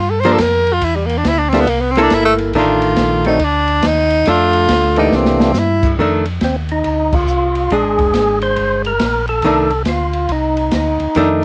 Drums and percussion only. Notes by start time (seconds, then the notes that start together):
0.23 ride
0.38 kick, snare, hi-hat pedal, ride
0.67 ride
0.81 kick, ride
1.09 ride
1.25 kick, snare, hi-hat pedal, ride
1.52 snare, ride
1.67 kick, ride
1.95 ride
2.10 kick, snare, hi-hat pedal, ride
2.38 ride
2.53 kick, ride
2.82 ride
2.96 kick, snare, hi-hat pedal, ride
3.25 ride
3.39 kick, ride
3.67 ride
3.82 kick, snare, hi-hat pedal, ride
4.10 ride
4.26 kick, ride
4.53 ride
4.69 kick, snare, hi-hat pedal, ride
4.96 ride
5.12 snare
5.26 snare
5.40 snare
5.54 snare, hi-hat pedal
5.83 kick, crash
5.98 kick
6.25 ride
6.41 kick, snare, hi-hat pedal, ride
6.69 ride
6.84 kick, ride
7.12 kick, crash
7.27 hi-hat pedal
7.55 ride
7.70 kick, ride
7.99 kick, ride
8.14 snare, hi-hat pedal, ride
8.42 ride
8.56 kick, ride
8.84 ride
8.99 kick, snare, hi-hat pedal, ride
9.27 ride
9.42 kick, ride
9.70 ride
9.85 kick, snare, hi-hat pedal, ride
10.13 ride
10.29 kick, ride
10.57 ride
10.71 kick, snare, hi-hat pedal, ride
11.00 ride
11.15 kick, ride